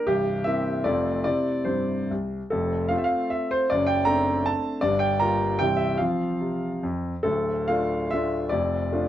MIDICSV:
0, 0, Header, 1, 2, 480
1, 0, Start_track
1, 0, Key_signature, -1, "major"
1, 0, Tempo, 389105
1, 79, Time_signature, 3, 2, 24, 8
1, 1528, Tempo, 423729
1, 2968, Tempo, 400000
1, 3928, Tempo, 379747
1, 7288, Tempo, 427350
1, 9688, Tempo, 408441
1, 10839, End_track
2, 0, Start_track
2, 0, Title_t, "Grand piano"
2, 0, Program_c, 0, 0
2, 82, Note_on_c, 0, 67, 75
2, 90, Note_on_c, 0, 24, 43
2, 92, Note_on_c, 0, 36, 51
2, 305, Control_c, 0, 64, 127
2, 537, Note_off_c, 0, 24, 0
2, 538, Note_off_c, 0, 36, 0
2, 546, Note_on_c, 0, 76, 78
2, 547, Note_off_c, 0, 67, 0
2, 564, Note_on_c, 0, 58, 35
2, 568, Note_on_c, 0, 60, 36
2, 577, Note_on_c, 0, 64, 38
2, 1003, Note_off_c, 0, 58, 0
2, 1006, Note_off_c, 0, 60, 0
2, 1011, Note_off_c, 0, 64, 0
2, 1037, Note_on_c, 0, 74, 72
2, 1043, Note_off_c, 0, 76, 0
2, 1049, Note_on_c, 0, 29, 41
2, 1052, Note_on_c, 0, 41, 49
2, 1053, Control_c, 0, 64, 0
2, 1055, Note_on_c, 0, 57, 35
2, 1062, Note_on_c, 0, 60, 36
2, 1070, Note_on_c, 0, 65, 35
2, 1285, Control_c, 0, 64, 127
2, 1486, Note_off_c, 0, 57, 0
2, 1490, Note_off_c, 0, 60, 0
2, 1494, Note_off_c, 0, 65, 0
2, 1512, Note_off_c, 0, 74, 0
2, 1517, Note_off_c, 0, 29, 0
2, 1518, Note_off_c, 0, 41, 0
2, 1530, Note_on_c, 0, 74, 75
2, 1540, Note_on_c, 0, 60, 32
2, 1541, Control_c, 0, 64, 0
2, 1544, Note_on_c, 0, 48, 39
2, 1547, Note_on_c, 0, 64, 33
2, 1756, Control_c, 0, 64, 127
2, 1867, Note_off_c, 0, 48, 0
2, 1911, Note_off_c, 0, 60, 0
2, 1915, Note_off_c, 0, 64, 0
2, 1988, Note_on_c, 0, 72, 50
2, 1999, Note_off_c, 0, 74, 0
2, 2003, Note_on_c, 0, 43, 39
2, 2352, Note_off_c, 0, 43, 0
2, 2494, Note_off_c, 0, 72, 0
2, 2508, Note_on_c, 0, 36, 40
2, 2513, Control_c, 0, 64, 0
2, 2833, Note_off_c, 0, 36, 0
2, 2961, Note_on_c, 0, 69, 64
2, 2977, Note_on_c, 0, 41, 48
2, 2979, Note_on_c, 0, 29, 42
2, 3201, Control_c, 0, 64, 127
2, 3417, Note_on_c, 0, 77, 67
2, 3435, Note_off_c, 0, 41, 0
2, 3436, Note_off_c, 0, 29, 0
2, 3436, Note_on_c, 0, 57, 32
2, 3440, Note_on_c, 0, 60, 34
2, 3441, Note_off_c, 0, 69, 0
2, 3443, Note_on_c, 0, 65, 35
2, 3458, Control_c, 0, 64, 0
2, 3519, Note_off_c, 0, 77, 0
2, 3533, Note_on_c, 0, 76, 56
2, 3605, Note_on_c, 0, 77, 70
2, 3620, Note_off_c, 0, 76, 0
2, 3918, Note_on_c, 0, 76, 73
2, 3920, Note_off_c, 0, 77, 0
2, 4166, Note_off_c, 0, 76, 0
2, 4181, Note_on_c, 0, 72, 74
2, 4347, Note_off_c, 0, 57, 0
2, 4349, Note_off_c, 0, 60, 0
2, 4351, Note_off_c, 0, 65, 0
2, 4407, Note_off_c, 0, 72, 0
2, 4418, Note_on_c, 0, 74, 80
2, 4438, Note_on_c, 0, 42, 50
2, 4442, Note_on_c, 0, 30, 45
2, 4631, Note_on_c, 0, 79, 76
2, 4640, Note_off_c, 0, 74, 0
2, 4650, Control_c, 0, 64, 127
2, 4864, Note_on_c, 0, 82, 85
2, 4880, Note_off_c, 0, 79, 0
2, 4880, Note_on_c, 0, 57, 37
2, 4884, Note_on_c, 0, 60, 39
2, 4885, Note_off_c, 0, 42, 0
2, 4887, Note_off_c, 0, 30, 0
2, 4893, Note_on_c, 0, 62, 43
2, 5378, Note_off_c, 0, 82, 0
2, 5378, Note_on_c, 0, 81, 74
2, 5398, Control_c, 0, 64, 0
2, 5792, Note_off_c, 0, 57, 0
2, 5794, Note_off_c, 0, 60, 0
2, 5798, Note_off_c, 0, 62, 0
2, 5829, Note_on_c, 0, 74, 91
2, 5839, Note_off_c, 0, 81, 0
2, 5846, Note_on_c, 0, 43, 50
2, 5850, Note_on_c, 0, 31, 49
2, 6057, Note_on_c, 0, 79, 77
2, 6058, Note_off_c, 0, 74, 0
2, 6088, Control_c, 0, 64, 127
2, 6293, Note_off_c, 0, 43, 0
2, 6295, Note_off_c, 0, 31, 0
2, 6301, Note_off_c, 0, 79, 0
2, 6314, Note_on_c, 0, 82, 78
2, 6330, Note_on_c, 0, 55, 39
2, 6336, Note_on_c, 0, 58, 38
2, 6345, Note_on_c, 0, 65, 44
2, 6772, Note_off_c, 0, 55, 0
2, 6775, Note_off_c, 0, 58, 0
2, 6780, Note_off_c, 0, 65, 0
2, 6808, Note_on_c, 0, 79, 78
2, 6813, Note_off_c, 0, 82, 0
2, 6824, Control_c, 0, 64, 0
2, 6824, Note_on_c, 0, 36, 46
2, 6825, Note_on_c, 0, 24, 41
2, 6829, Note_on_c, 0, 55, 34
2, 6830, Note_on_c, 0, 60, 33
2, 6847, Note_on_c, 0, 64, 35
2, 7033, Note_on_c, 0, 76, 69
2, 7035, Control_c, 0, 64, 127
2, 7049, Note_off_c, 0, 79, 0
2, 7253, Note_off_c, 0, 55, 0
2, 7254, Note_off_c, 0, 60, 0
2, 7263, Note_off_c, 0, 64, 0
2, 7282, Note_off_c, 0, 76, 0
2, 7283, Note_off_c, 0, 36, 0
2, 7284, Note_off_c, 0, 24, 0
2, 7295, Note_on_c, 0, 77, 62
2, 7305, Control_c, 0, 64, 0
2, 7311, Note_on_c, 0, 65, 31
2, 7312, Note_on_c, 0, 53, 41
2, 7315, Note_on_c, 0, 60, 31
2, 7517, Control_c, 0, 64, 127
2, 7630, Note_off_c, 0, 53, 0
2, 7675, Note_off_c, 0, 65, 0
2, 7677, Note_off_c, 0, 60, 0
2, 7775, Note_on_c, 0, 48, 37
2, 8112, Note_off_c, 0, 48, 0
2, 8249, Note_off_c, 0, 77, 0
2, 8258, Note_on_c, 0, 41, 39
2, 8259, Control_c, 0, 64, 0
2, 8587, Note_off_c, 0, 41, 0
2, 8705, Note_on_c, 0, 69, 67
2, 8717, Note_on_c, 0, 26, 43
2, 8717, Note_on_c, 0, 38, 45
2, 8969, Control_c, 0, 64, 127
2, 9197, Note_off_c, 0, 69, 0
2, 9205, Note_on_c, 0, 77, 71
2, 9217, Note_on_c, 0, 57, 34
2, 9222, Note_on_c, 0, 62, 34
2, 9225, Note_on_c, 0, 65, 37
2, 9650, Note_off_c, 0, 57, 0
2, 9653, Note_off_c, 0, 62, 0
2, 9655, Note_off_c, 0, 65, 0
2, 9689, Note_off_c, 0, 77, 0
2, 9689, Note_on_c, 0, 76, 77
2, 9703, Control_c, 0, 64, 0
2, 9714, Note_on_c, 0, 62, 36
2, 9715, Note_on_c, 0, 57, 37
2, 9718, Note_on_c, 0, 65, 38
2, 10112, Note_off_c, 0, 26, 0
2, 10113, Note_off_c, 0, 38, 0
2, 10126, Note_off_c, 0, 62, 0
2, 10127, Note_off_c, 0, 57, 0
2, 10128, Note_off_c, 0, 65, 0
2, 10144, Note_on_c, 0, 74, 74
2, 10160, Note_off_c, 0, 76, 0
2, 10163, Note_on_c, 0, 41, 47
2, 10166, Note_on_c, 0, 29, 46
2, 10408, Control_c, 0, 64, 127
2, 10648, Note_on_c, 0, 57, 34
2, 10651, Note_on_c, 0, 62, 35
2, 10654, Note_on_c, 0, 65, 39
2, 10839, Note_off_c, 0, 29, 0
2, 10839, Note_off_c, 0, 41, 0
2, 10839, Note_off_c, 0, 57, 0
2, 10839, Note_off_c, 0, 62, 0
2, 10839, Note_off_c, 0, 65, 0
2, 10839, Note_off_c, 0, 74, 0
2, 10839, End_track
0, 0, End_of_file